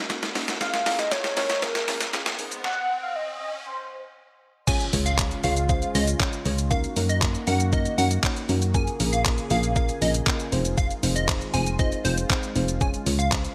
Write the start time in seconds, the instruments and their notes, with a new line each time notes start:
Already playing: analog synth pad F#3 D#4 A#4, riser
0.10 synth pluck A#3 C#4 D#4 F#4, kick, snare, shaker
0.23 snare, closed hi-hat, shaker
0.35 synth pluck A#3 C#4 D#4 F#4, snare, open hi-hat, shaker
0.48 synth arpeggio sound F#3, snare, closed hi-hat, shaker
0.61 synth arpeggio sound A#2, analog synth pad G#3 C#4 A#4, synth pluck A#3 C#4 F4 G#4, soft synth lead F5, kick, snare, shaker
0.73 synth arpeggio sound G#3, snare, closed hi-hat, shaker
0.86 synth pluck A#3 C#4 F4 G#4, snare, open hi-hat, shaker
0.99 synth arpeggio sound G#3, soft synth lead D#5, snare, closed hi-hat, shaker
1.11 synth pluck A#3 C#4 F4 G#4, synth arpeggio sound C#4, soft synth lead C#5, kick, snare, shaker
1.24 synth arpeggio sound C#4, snare, closed hi-hat, shaker
1.37 synth pluck A#3 C#4 F4 A#4, synth arpeggio sound C#4, soft synth lead C#5, snare, open hi-hat, shaker
1.50 snare, closed hi-hat, shaker
1.62 synth pluck A#3 C#4 F4 G#4, soft synth lead A#4, kick, snare, shaker
1.75 snare, closed hi-hat, shaker
1.88 synth pluck A#3 C#4 F4 G#4, snare, open hi-hat, shaker
2.01 snare, closed hi-hat, shaker
2.13 synth pluck A#3 C#4 F4 G#4, snare, shaker
2.26 snare, closed hi-hat, shaker
2.39 synth pluck G#3 C4 D#4 G#4, analog synth pad D#4 C5, open hi-hat, shaker
2.51 synth arpeggio sound G#3, closed hi-hat, shaker
2.64 soft synth lead F#5, kick, snare
3.03 soft synth lead F5
3.16 soft synth lead D#5
3.41 soft synth lead D#5
3.66 soft synth lead C5
4.67 analog synth pad C#3 G#3 F4, synth pluck G#3 C#4 F4 G#4 C#5, digital synth lead G#5, kick, crash, impact, shaker
4.80 closed hi-hat, shaker
4.93 fm bass C#2, synth pluck G#3 C#4 F4 G#4 C#5, open hi-hat, shaker
5.06 digital synth lead F5, closed hi-hat, shaker
5.18 synth pluck G#3 C#4 F4 G#4 C#5, kick, clap, shaker
5.31 closed hi-hat, shaker
5.44 fm bass C#2, synth pluck G#3 C#4 F4 G#4 C#5, digital synth lead F5, open hi-hat, shaker
5.57 closed hi-hat, shaker
5.69 synth pluck G#3 C#4 F4 G#4 C5, digital synth lead F5, kick, shaker
5.82 closed hi-hat, shaker
5.95 fm bass C#2, synth pluck G#3 C#4 F4 G#4 C#5, digital synth lead D#5, open hi-hat, shaker
6.07 closed hi-hat, shaker
6.20 synth pluck G#3 C#4 F4 G#4 C#5, kick, clap, shaker
6.33 closed hi-hat, shaker
6.46 fm bass C#2, synth pluck G#3 C#4 F4 G#4 C#5, open hi-hat, shaker
6.58 closed hi-hat, shaker
6.71 analog synth pad D#3 A#3 F#4, synth pluck A#3 C#4 D#4 F#4 A#4, digital synth lead F5, kick, shaker
6.84 closed hi-hat, shaker
6.96 fm bass F#2, synth pluck A#3 C#4 D#4 F#4 A#4, open hi-hat, shaker
7.09 digital synth lead D#5, closed hi-hat, shaker
7.22 synth pluck A#3 C#4 D#4 F#4 A#4, kick, clap, shaker
7.35 closed hi-hat, shaker
7.47 fm bass F#2, synth pluck A#3 C#4 D#4 F#4 A#4, digital synth lead F#5, open hi-hat, shaker
7.60 closed hi-hat, shaker
7.73 synth pluck A#3 C#4 D#4 F#4 A#4, digital synth lead D#5, kick, shaker
7.85 closed hi-hat, shaker
7.98 fm bass F#2, synth pluck A#3 C#4 D#4 F#4 A#4, digital synth lead F#5, open hi-hat, shaker
8.11 closed hi-hat, shaker
8.23 synth pluck A#3 C#4 D#4 F#4 C#5, kick, clap, shaker
8.36 closed hi-hat, shaker
8.49 fm bass F#2, synth pluck A#3 C#4 D#4 F#4 A#4, open hi-hat, shaker
8.62 closed hi-hat, shaker
8.74 analog synth pad C#3 A#3 G#4, synth pluck A#3 C#4 F4 G#4 A#4, digital synth lead G#5, kick, shaker
8.87 closed hi-hat, shaker
9.00 fm bass A#1, synth pluck A#3 C#4 F4 G#4 A#4, open hi-hat, shaker
9.13 digital synth lead F5, closed hi-hat, shaker
9.25 synth pluck A#3 C#4 F4 G#4 A#4, kick, clap, shaker
9.38 closed hi-hat, shaker
9.50 fm bass A#1, synth pluck A#3 C#4 F4 G#4 A#4, digital synth lead F5, open hi-hat, shaker
9.63 closed hi-hat, shaker
9.76 synth pluck A#3 C#4 F4 G#4 A#4, digital synth lead F5, kick, shaker
9.89 closed hi-hat, shaker
10.01 fm bass A#1, synth pluck A#3 C#4 F4 G#4 A#4, digital synth lead D#5, open hi-hat, shaker
10.14 closed hi-hat, shaker
10.27 synth pluck A#3 C#4 F4 G#4 A#4, kick, clap, shaker
10.40 closed hi-hat, shaker
10.52 fm bass F1, analog synth pad D#3 G#3 F4, synth pluck C4 D#4 F4 G#4 C5, open hi-hat, shaker
10.65 closed hi-hat, shaker
10.78 digital synth lead F5, kick, shaker
10.91 closed hi-hat, shaker
11.03 fm bass F1, synth pluck C4 D#4 F4 G#4 C5, open hi-hat, shaker
11.16 digital synth lead D#5, closed hi-hat, shaker
11.28 synth pluck C4 D#4 F4 G#4 C5, kick, clap, shaker
11.41 closed hi-hat, shaker
11.54 fm bass F1, synth pluck C4 D#4 F4 G#4 C5, digital synth lead G#5, open hi-hat, shaker
11.66 closed hi-hat, shaker
11.79 synth pluck C4 D#4 F4 G#4 C5, digital synth lead D#5, kick, shaker
11.92 closed hi-hat, shaker
12.04 fm bass F1, synth pluck C4 D#4 F4 G#4 C5, digital synth lead C5, open hi-hat, shaker
12.18 closed hi-hat, shaker
12.30 synth pluck C4 D#4 F4 G#4 C5, kick, clap, shaker
12.43 closed hi-hat, shaker
12.55 fm bass F1, synth pluck C4 D#4 F4 G#4 C5, open hi-hat, shaker
12.68 closed hi-hat, shaker
12.81 analog synth pad C#3, synth pluck G#3 C#4 F4 G#4 C#5, digital synth lead G#5, kick, shaker
12.94 closed hi-hat, shaker
13.06 fm bass C#2, synth pluck G#3 C#4 F4 G#4 C#5, open hi-hat, shaker
13.19 digital synth lead F5, closed hi-hat, shaker
13.32 synth pluck G#3 C#4 F4 G#4 C5, kick, clap, shaker
13.45 closed hi-hat, shaker